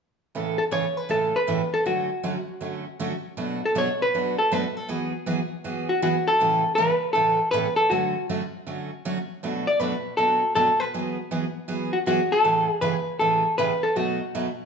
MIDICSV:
0, 0, Header, 1, 3, 480
1, 0, Start_track
1, 0, Key_signature, 3, "major"
1, 0, Tempo, 378072
1, 449, Time_signature, 4, 2, 24, 8
1, 18602, End_track
2, 0, Start_track
2, 0, Title_t, "Hollow-body jazz guitar"
2, 0, Program_c, 0, 26
2, 738, Note_on_c, 0, 69, 83
2, 802, Note_off_c, 0, 69, 0
2, 920, Note_on_c, 0, 73, 88
2, 1232, Note_off_c, 0, 73, 0
2, 1232, Note_on_c, 0, 71, 89
2, 1404, Note_on_c, 0, 69, 86
2, 1407, Note_off_c, 0, 71, 0
2, 1727, Note_on_c, 0, 71, 89
2, 1735, Note_off_c, 0, 69, 0
2, 2205, Note_on_c, 0, 69, 87
2, 2222, Note_off_c, 0, 71, 0
2, 2363, Note_off_c, 0, 69, 0
2, 2368, Note_on_c, 0, 66, 68
2, 3759, Note_off_c, 0, 66, 0
2, 4641, Note_on_c, 0, 69, 78
2, 4790, Note_off_c, 0, 69, 0
2, 4803, Note_on_c, 0, 73, 89
2, 5102, Note_off_c, 0, 73, 0
2, 5107, Note_on_c, 0, 71, 91
2, 5562, Note_off_c, 0, 71, 0
2, 5567, Note_on_c, 0, 69, 79
2, 5746, Note_off_c, 0, 69, 0
2, 5746, Note_on_c, 0, 71, 99
2, 6053, Note_off_c, 0, 71, 0
2, 6053, Note_on_c, 0, 69, 84
2, 6220, Note_off_c, 0, 69, 0
2, 6220, Note_on_c, 0, 68, 76
2, 7481, Note_on_c, 0, 66, 73
2, 7642, Note_off_c, 0, 66, 0
2, 7657, Note_on_c, 0, 66, 85
2, 7962, Note_off_c, 0, 68, 0
2, 7967, Note_on_c, 0, 69, 101
2, 7981, Note_off_c, 0, 66, 0
2, 8568, Note_off_c, 0, 69, 0
2, 8573, Note_on_c, 0, 71, 91
2, 9047, Note_off_c, 0, 71, 0
2, 9052, Note_on_c, 0, 69, 81
2, 9533, Note_off_c, 0, 69, 0
2, 9538, Note_on_c, 0, 71, 102
2, 9852, Note_off_c, 0, 71, 0
2, 9857, Note_on_c, 0, 69, 92
2, 10028, Note_on_c, 0, 66, 71
2, 10039, Note_off_c, 0, 69, 0
2, 10484, Note_off_c, 0, 66, 0
2, 12281, Note_on_c, 0, 74, 98
2, 12438, Note_off_c, 0, 74, 0
2, 12438, Note_on_c, 0, 71, 93
2, 12908, Note_off_c, 0, 71, 0
2, 12913, Note_on_c, 0, 69, 87
2, 13366, Note_off_c, 0, 69, 0
2, 13399, Note_on_c, 0, 69, 98
2, 13710, Note_off_c, 0, 69, 0
2, 13710, Note_on_c, 0, 71, 101
2, 15146, Note_on_c, 0, 66, 73
2, 15157, Note_off_c, 0, 71, 0
2, 15210, Note_off_c, 0, 66, 0
2, 15326, Note_on_c, 0, 66, 87
2, 15644, Note_on_c, 0, 69, 90
2, 15655, Note_off_c, 0, 66, 0
2, 16263, Note_off_c, 0, 69, 0
2, 16268, Note_on_c, 0, 71, 82
2, 16747, Note_off_c, 0, 71, 0
2, 16752, Note_on_c, 0, 69, 74
2, 17236, Note_off_c, 0, 69, 0
2, 17241, Note_on_c, 0, 71, 93
2, 17560, Note_on_c, 0, 69, 82
2, 17572, Note_off_c, 0, 71, 0
2, 17726, Note_off_c, 0, 69, 0
2, 17726, Note_on_c, 0, 66, 68
2, 18206, Note_off_c, 0, 66, 0
2, 18602, End_track
3, 0, Start_track
3, 0, Title_t, "Steel-string acoustic guitar"
3, 0, Program_c, 1, 25
3, 440, Note_on_c, 1, 45, 50
3, 447, Note_on_c, 1, 49, 49
3, 448, Note_on_c, 1, 57, 53
3, 449, Note_on_c, 1, 52, 51
3, 451, Note_on_c, 1, 61, 53
3, 456, Note_on_c, 1, 69, 62
3, 732, Note_off_c, 1, 45, 0
3, 735, Note_off_c, 1, 49, 0
3, 735, Note_off_c, 1, 57, 0
3, 736, Note_off_c, 1, 52, 0
3, 737, Note_off_c, 1, 61, 0
3, 740, Note_off_c, 1, 69, 0
3, 905, Note_on_c, 1, 45, 61
3, 907, Note_on_c, 1, 52, 67
3, 908, Note_on_c, 1, 49, 66
3, 913, Note_on_c, 1, 57, 65
3, 916, Note_on_c, 1, 61, 70
3, 917, Note_on_c, 1, 69, 70
3, 1069, Note_off_c, 1, 45, 0
3, 1070, Note_off_c, 1, 49, 0
3, 1070, Note_off_c, 1, 52, 0
3, 1073, Note_off_c, 1, 57, 0
3, 1075, Note_off_c, 1, 61, 0
3, 1075, Note_off_c, 1, 69, 0
3, 1382, Note_on_c, 1, 49, 47
3, 1384, Note_on_c, 1, 45, 49
3, 1390, Note_on_c, 1, 52, 48
3, 1390, Note_on_c, 1, 69, 57
3, 1391, Note_on_c, 1, 57, 50
3, 1393, Note_on_c, 1, 61, 57
3, 1683, Note_off_c, 1, 49, 0
3, 1684, Note_off_c, 1, 45, 0
3, 1687, Note_off_c, 1, 52, 0
3, 1687, Note_off_c, 1, 57, 0
3, 1687, Note_off_c, 1, 69, 0
3, 1688, Note_off_c, 1, 61, 0
3, 1871, Note_on_c, 1, 45, 73
3, 1876, Note_on_c, 1, 49, 63
3, 1881, Note_on_c, 1, 57, 71
3, 1882, Note_on_c, 1, 52, 73
3, 1885, Note_on_c, 1, 61, 69
3, 1885, Note_on_c, 1, 69, 76
3, 2033, Note_off_c, 1, 45, 0
3, 2035, Note_off_c, 1, 49, 0
3, 2038, Note_off_c, 1, 52, 0
3, 2038, Note_off_c, 1, 57, 0
3, 2039, Note_off_c, 1, 61, 0
3, 2039, Note_off_c, 1, 69, 0
3, 2357, Note_on_c, 1, 50, 50
3, 2357, Note_on_c, 1, 54, 53
3, 2362, Note_on_c, 1, 57, 49
3, 2363, Note_on_c, 1, 61, 53
3, 2369, Note_on_c, 1, 66, 57
3, 2650, Note_off_c, 1, 54, 0
3, 2651, Note_off_c, 1, 50, 0
3, 2653, Note_off_c, 1, 57, 0
3, 2654, Note_off_c, 1, 61, 0
3, 2657, Note_off_c, 1, 66, 0
3, 2837, Note_on_c, 1, 54, 62
3, 2839, Note_on_c, 1, 50, 67
3, 2844, Note_on_c, 1, 61, 69
3, 2844, Note_on_c, 1, 66, 72
3, 2845, Note_on_c, 1, 57, 63
3, 2996, Note_off_c, 1, 54, 0
3, 2997, Note_off_c, 1, 50, 0
3, 2999, Note_off_c, 1, 61, 0
3, 2999, Note_off_c, 1, 66, 0
3, 3000, Note_off_c, 1, 57, 0
3, 3309, Note_on_c, 1, 50, 49
3, 3311, Note_on_c, 1, 54, 52
3, 3320, Note_on_c, 1, 57, 49
3, 3323, Note_on_c, 1, 61, 53
3, 3327, Note_on_c, 1, 66, 52
3, 3606, Note_off_c, 1, 50, 0
3, 3608, Note_off_c, 1, 54, 0
3, 3612, Note_off_c, 1, 57, 0
3, 3614, Note_off_c, 1, 61, 0
3, 3616, Note_off_c, 1, 66, 0
3, 3803, Note_on_c, 1, 50, 69
3, 3807, Note_on_c, 1, 57, 79
3, 3810, Note_on_c, 1, 54, 70
3, 3815, Note_on_c, 1, 61, 77
3, 3816, Note_on_c, 1, 66, 79
3, 3959, Note_off_c, 1, 50, 0
3, 3961, Note_off_c, 1, 57, 0
3, 3962, Note_off_c, 1, 54, 0
3, 3965, Note_off_c, 1, 61, 0
3, 3965, Note_off_c, 1, 66, 0
3, 4280, Note_on_c, 1, 47, 55
3, 4281, Note_on_c, 1, 54, 55
3, 4287, Note_on_c, 1, 57, 57
3, 4289, Note_on_c, 1, 66, 62
3, 4293, Note_on_c, 1, 62, 53
3, 4572, Note_off_c, 1, 47, 0
3, 4573, Note_off_c, 1, 54, 0
3, 4576, Note_off_c, 1, 57, 0
3, 4577, Note_off_c, 1, 66, 0
3, 4578, Note_off_c, 1, 62, 0
3, 4762, Note_on_c, 1, 47, 68
3, 4765, Note_on_c, 1, 54, 64
3, 4767, Note_on_c, 1, 62, 72
3, 4773, Note_on_c, 1, 57, 71
3, 4774, Note_on_c, 1, 66, 73
3, 4918, Note_off_c, 1, 47, 0
3, 4920, Note_off_c, 1, 54, 0
3, 4920, Note_off_c, 1, 62, 0
3, 4923, Note_off_c, 1, 57, 0
3, 4924, Note_off_c, 1, 66, 0
3, 5259, Note_on_c, 1, 47, 51
3, 5266, Note_on_c, 1, 54, 49
3, 5266, Note_on_c, 1, 62, 55
3, 5270, Note_on_c, 1, 57, 48
3, 5271, Note_on_c, 1, 66, 61
3, 5541, Note_off_c, 1, 47, 0
3, 5545, Note_off_c, 1, 54, 0
3, 5545, Note_off_c, 1, 62, 0
3, 5547, Note_off_c, 1, 57, 0
3, 5548, Note_off_c, 1, 66, 0
3, 5733, Note_on_c, 1, 47, 74
3, 5735, Note_on_c, 1, 54, 67
3, 5744, Note_on_c, 1, 57, 82
3, 5744, Note_on_c, 1, 62, 70
3, 5746, Note_on_c, 1, 66, 76
3, 5883, Note_off_c, 1, 47, 0
3, 5884, Note_off_c, 1, 54, 0
3, 5889, Note_off_c, 1, 57, 0
3, 5889, Note_off_c, 1, 62, 0
3, 5890, Note_off_c, 1, 66, 0
3, 6202, Note_on_c, 1, 52, 54
3, 6208, Note_on_c, 1, 54, 54
3, 6208, Note_on_c, 1, 59, 54
3, 6213, Note_on_c, 1, 68, 60
3, 6215, Note_on_c, 1, 66, 58
3, 6493, Note_off_c, 1, 52, 0
3, 6496, Note_off_c, 1, 54, 0
3, 6496, Note_off_c, 1, 59, 0
3, 6498, Note_off_c, 1, 68, 0
3, 6499, Note_off_c, 1, 66, 0
3, 6681, Note_on_c, 1, 54, 62
3, 6683, Note_on_c, 1, 52, 65
3, 6689, Note_on_c, 1, 59, 70
3, 6690, Note_on_c, 1, 66, 73
3, 6693, Note_on_c, 1, 68, 79
3, 6837, Note_off_c, 1, 54, 0
3, 6839, Note_off_c, 1, 52, 0
3, 6841, Note_off_c, 1, 59, 0
3, 6842, Note_off_c, 1, 66, 0
3, 6843, Note_off_c, 1, 68, 0
3, 7163, Note_on_c, 1, 52, 50
3, 7164, Note_on_c, 1, 54, 50
3, 7170, Note_on_c, 1, 68, 55
3, 7171, Note_on_c, 1, 66, 59
3, 7172, Note_on_c, 1, 59, 49
3, 7453, Note_off_c, 1, 52, 0
3, 7454, Note_off_c, 1, 54, 0
3, 7456, Note_off_c, 1, 68, 0
3, 7457, Note_off_c, 1, 66, 0
3, 7458, Note_off_c, 1, 59, 0
3, 7647, Note_on_c, 1, 54, 72
3, 7648, Note_on_c, 1, 52, 66
3, 7649, Note_on_c, 1, 59, 71
3, 7656, Note_on_c, 1, 66, 69
3, 7656, Note_on_c, 1, 68, 82
3, 7800, Note_off_c, 1, 52, 0
3, 7800, Note_off_c, 1, 54, 0
3, 7801, Note_off_c, 1, 59, 0
3, 7804, Note_off_c, 1, 66, 0
3, 7805, Note_off_c, 1, 68, 0
3, 8127, Note_on_c, 1, 49, 53
3, 8131, Note_on_c, 1, 45, 54
3, 8134, Note_on_c, 1, 52, 58
3, 8140, Note_on_c, 1, 69, 60
3, 8141, Note_on_c, 1, 57, 61
3, 8146, Note_on_c, 1, 61, 58
3, 8415, Note_off_c, 1, 49, 0
3, 8417, Note_off_c, 1, 45, 0
3, 8419, Note_off_c, 1, 52, 0
3, 8422, Note_off_c, 1, 57, 0
3, 8422, Note_off_c, 1, 69, 0
3, 8424, Note_off_c, 1, 61, 0
3, 8605, Note_on_c, 1, 49, 63
3, 8610, Note_on_c, 1, 45, 71
3, 8611, Note_on_c, 1, 52, 73
3, 8611, Note_on_c, 1, 57, 70
3, 8616, Note_on_c, 1, 61, 65
3, 8621, Note_on_c, 1, 69, 72
3, 8759, Note_off_c, 1, 49, 0
3, 8761, Note_off_c, 1, 45, 0
3, 8762, Note_off_c, 1, 52, 0
3, 8762, Note_off_c, 1, 57, 0
3, 8764, Note_off_c, 1, 61, 0
3, 8767, Note_off_c, 1, 69, 0
3, 9077, Note_on_c, 1, 45, 45
3, 9077, Note_on_c, 1, 49, 52
3, 9082, Note_on_c, 1, 52, 53
3, 9086, Note_on_c, 1, 57, 52
3, 9086, Note_on_c, 1, 69, 57
3, 9089, Note_on_c, 1, 61, 54
3, 9370, Note_off_c, 1, 45, 0
3, 9370, Note_off_c, 1, 49, 0
3, 9372, Note_off_c, 1, 52, 0
3, 9374, Note_off_c, 1, 57, 0
3, 9374, Note_off_c, 1, 69, 0
3, 9376, Note_off_c, 1, 61, 0
3, 9560, Note_on_c, 1, 45, 69
3, 9564, Note_on_c, 1, 49, 70
3, 9570, Note_on_c, 1, 52, 82
3, 9571, Note_on_c, 1, 57, 73
3, 9574, Note_on_c, 1, 61, 81
3, 9576, Note_on_c, 1, 69, 79
3, 9716, Note_off_c, 1, 45, 0
3, 9718, Note_off_c, 1, 49, 0
3, 9721, Note_off_c, 1, 52, 0
3, 9722, Note_off_c, 1, 57, 0
3, 9723, Note_off_c, 1, 61, 0
3, 9724, Note_off_c, 1, 69, 0
3, 10045, Note_on_c, 1, 50, 53
3, 10046, Note_on_c, 1, 54, 55
3, 10050, Note_on_c, 1, 57, 61
3, 10051, Note_on_c, 1, 61, 54
3, 10058, Note_on_c, 1, 66, 59
3, 10333, Note_off_c, 1, 50, 0
3, 10334, Note_off_c, 1, 54, 0
3, 10336, Note_off_c, 1, 57, 0
3, 10337, Note_off_c, 1, 61, 0
3, 10340, Note_off_c, 1, 66, 0
3, 10530, Note_on_c, 1, 50, 62
3, 10532, Note_on_c, 1, 54, 62
3, 10532, Note_on_c, 1, 61, 70
3, 10533, Note_on_c, 1, 57, 77
3, 10543, Note_on_c, 1, 66, 74
3, 10681, Note_off_c, 1, 50, 0
3, 10682, Note_off_c, 1, 54, 0
3, 10682, Note_off_c, 1, 61, 0
3, 10683, Note_off_c, 1, 57, 0
3, 10687, Note_off_c, 1, 66, 0
3, 11001, Note_on_c, 1, 50, 55
3, 11005, Note_on_c, 1, 54, 48
3, 11011, Note_on_c, 1, 57, 51
3, 11015, Note_on_c, 1, 61, 57
3, 11016, Note_on_c, 1, 66, 58
3, 11291, Note_off_c, 1, 50, 0
3, 11293, Note_off_c, 1, 54, 0
3, 11296, Note_off_c, 1, 57, 0
3, 11299, Note_off_c, 1, 61, 0
3, 11299, Note_off_c, 1, 66, 0
3, 11492, Note_on_c, 1, 50, 68
3, 11493, Note_on_c, 1, 57, 75
3, 11495, Note_on_c, 1, 54, 78
3, 11500, Note_on_c, 1, 61, 73
3, 11504, Note_on_c, 1, 66, 82
3, 11642, Note_off_c, 1, 50, 0
3, 11642, Note_off_c, 1, 57, 0
3, 11643, Note_off_c, 1, 54, 0
3, 11646, Note_off_c, 1, 61, 0
3, 11648, Note_off_c, 1, 66, 0
3, 11972, Note_on_c, 1, 47, 54
3, 11979, Note_on_c, 1, 57, 61
3, 11979, Note_on_c, 1, 62, 56
3, 11981, Note_on_c, 1, 54, 54
3, 11986, Note_on_c, 1, 66, 59
3, 12257, Note_off_c, 1, 47, 0
3, 12260, Note_off_c, 1, 57, 0
3, 12261, Note_off_c, 1, 54, 0
3, 12261, Note_off_c, 1, 62, 0
3, 12264, Note_off_c, 1, 66, 0
3, 12436, Note_on_c, 1, 47, 68
3, 12448, Note_on_c, 1, 54, 66
3, 12452, Note_on_c, 1, 62, 76
3, 12454, Note_on_c, 1, 57, 69
3, 12457, Note_on_c, 1, 66, 81
3, 12594, Note_off_c, 1, 47, 0
3, 12600, Note_off_c, 1, 54, 0
3, 12602, Note_off_c, 1, 57, 0
3, 12602, Note_off_c, 1, 62, 0
3, 12604, Note_off_c, 1, 66, 0
3, 12923, Note_on_c, 1, 47, 55
3, 12926, Note_on_c, 1, 54, 49
3, 12931, Note_on_c, 1, 57, 59
3, 12933, Note_on_c, 1, 66, 54
3, 12934, Note_on_c, 1, 62, 58
3, 13212, Note_off_c, 1, 47, 0
3, 13214, Note_off_c, 1, 54, 0
3, 13216, Note_off_c, 1, 57, 0
3, 13217, Note_off_c, 1, 66, 0
3, 13218, Note_off_c, 1, 62, 0
3, 13400, Note_on_c, 1, 47, 72
3, 13406, Note_on_c, 1, 54, 78
3, 13414, Note_on_c, 1, 57, 78
3, 13414, Note_on_c, 1, 66, 78
3, 13415, Note_on_c, 1, 62, 81
3, 13556, Note_off_c, 1, 47, 0
3, 13559, Note_off_c, 1, 54, 0
3, 13562, Note_off_c, 1, 57, 0
3, 13563, Note_off_c, 1, 62, 0
3, 13563, Note_off_c, 1, 66, 0
3, 13890, Note_on_c, 1, 52, 52
3, 13894, Note_on_c, 1, 54, 53
3, 13897, Note_on_c, 1, 59, 59
3, 13898, Note_on_c, 1, 66, 55
3, 13902, Note_on_c, 1, 68, 59
3, 14176, Note_off_c, 1, 52, 0
3, 14178, Note_off_c, 1, 54, 0
3, 14179, Note_off_c, 1, 59, 0
3, 14179, Note_off_c, 1, 66, 0
3, 14182, Note_off_c, 1, 68, 0
3, 14358, Note_on_c, 1, 52, 60
3, 14362, Note_on_c, 1, 54, 66
3, 14364, Note_on_c, 1, 59, 70
3, 14371, Note_on_c, 1, 66, 66
3, 14375, Note_on_c, 1, 68, 70
3, 14515, Note_off_c, 1, 52, 0
3, 14516, Note_off_c, 1, 54, 0
3, 14517, Note_off_c, 1, 59, 0
3, 14521, Note_off_c, 1, 66, 0
3, 14523, Note_off_c, 1, 68, 0
3, 14827, Note_on_c, 1, 54, 53
3, 14831, Note_on_c, 1, 52, 50
3, 14834, Note_on_c, 1, 68, 62
3, 14837, Note_on_c, 1, 66, 56
3, 14838, Note_on_c, 1, 59, 52
3, 15124, Note_off_c, 1, 54, 0
3, 15126, Note_off_c, 1, 52, 0
3, 15128, Note_off_c, 1, 68, 0
3, 15129, Note_off_c, 1, 59, 0
3, 15129, Note_off_c, 1, 66, 0
3, 15315, Note_on_c, 1, 52, 64
3, 15325, Note_on_c, 1, 54, 66
3, 15328, Note_on_c, 1, 59, 71
3, 15330, Note_on_c, 1, 66, 71
3, 15336, Note_on_c, 1, 68, 82
3, 15473, Note_off_c, 1, 52, 0
3, 15478, Note_off_c, 1, 54, 0
3, 15479, Note_off_c, 1, 59, 0
3, 15480, Note_off_c, 1, 66, 0
3, 15483, Note_off_c, 1, 68, 0
3, 15800, Note_on_c, 1, 45, 53
3, 15800, Note_on_c, 1, 52, 51
3, 15804, Note_on_c, 1, 49, 54
3, 15804, Note_on_c, 1, 68, 52
3, 15805, Note_on_c, 1, 61, 53
3, 15807, Note_on_c, 1, 57, 55
3, 16090, Note_off_c, 1, 45, 0
3, 16090, Note_off_c, 1, 52, 0
3, 16092, Note_off_c, 1, 49, 0
3, 16093, Note_off_c, 1, 61, 0
3, 16093, Note_off_c, 1, 68, 0
3, 16094, Note_off_c, 1, 57, 0
3, 16272, Note_on_c, 1, 45, 63
3, 16274, Note_on_c, 1, 49, 71
3, 16276, Note_on_c, 1, 52, 71
3, 16276, Note_on_c, 1, 61, 73
3, 16277, Note_on_c, 1, 57, 68
3, 16289, Note_on_c, 1, 68, 75
3, 16431, Note_off_c, 1, 45, 0
3, 16432, Note_off_c, 1, 49, 0
3, 16433, Note_off_c, 1, 52, 0
3, 16433, Note_off_c, 1, 61, 0
3, 16434, Note_off_c, 1, 57, 0
3, 16440, Note_off_c, 1, 68, 0
3, 16765, Note_on_c, 1, 45, 48
3, 16767, Note_on_c, 1, 49, 56
3, 16771, Note_on_c, 1, 57, 49
3, 16771, Note_on_c, 1, 61, 52
3, 16772, Note_on_c, 1, 52, 53
3, 16774, Note_on_c, 1, 68, 58
3, 17053, Note_off_c, 1, 45, 0
3, 17054, Note_off_c, 1, 49, 0
3, 17056, Note_off_c, 1, 52, 0
3, 17056, Note_off_c, 1, 57, 0
3, 17056, Note_off_c, 1, 61, 0
3, 17058, Note_off_c, 1, 68, 0
3, 17247, Note_on_c, 1, 45, 70
3, 17251, Note_on_c, 1, 49, 72
3, 17252, Note_on_c, 1, 52, 80
3, 17257, Note_on_c, 1, 61, 75
3, 17261, Note_on_c, 1, 57, 80
3, 17264, Note_on_c, 1, 68, 77
3, 17399, Note_off_c, 1, 45, 0
3, 17401, Note_off_c, 1, 49, 0
3, 17401, Note_off_c, 1, 52, 0
3, 17404, Note_off_c, 1, 61, 0
3, 17406, Note_off_c, 1, 57, 0
3, 17407, Note_off_c, 1, 68, 0
3, 17720, Note_on_c, 1, 47, 54
3, 17726, Note_on_c, 1, 54, 54
3, 17729, Note_on_c, 1, 57, 50
3, 17733, Note_on_c, 1, 63, 62
3, 17734, Note_on_c, 1, 66, 59
3, 18010, Note_off_c, 1, 47, 0
3, 18013, Note_off_c, 1, 54, 0
3, 18015, Note_off_c, 1, 57, 0
3, 18017, Note_off_c, 1, 63, 0
3, 18017, Note_off_c, 1, 66, 0
3, 18215, Note_on_c, 1, 47, 72
3, 18217, Note_on_c, 1, 54, 69
3, 18219, Note_on_c, 1, 63, 75
3, 18221, Note_on_c, 1, 57, 72
3, 18224, Note_on_c, 1, 66, 72
3, 18363, Note_off_c, 1, 47, 0
3, 18364, Note_off_c, 1, 54, 0
3, 18365, Note_off_c, 1, 63, 0
3, 18366, Note_off_c, 1, 57, 0
3, 18367, Note_off_c, 1, 66, 0
3, 18602, End_track
0, 0, End_of_file